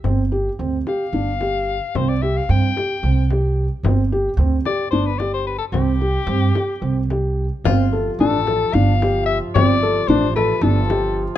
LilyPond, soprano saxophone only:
\new Staff \with { instrumentName = "Soprano saxophone" } { \time 7/8 \key d \dorian \tempo 4 = 111 r4. f''2 | c''16 d''16 e''16 f''16 g''4. r4 | r4. d''8 c''16 b'16 d''16 c''16 b'16 a'16 | g'2~ g'8 r4 |
r4 a'4 f''4 e''8 | d''4 c''8 b'8 a'4 r8 | }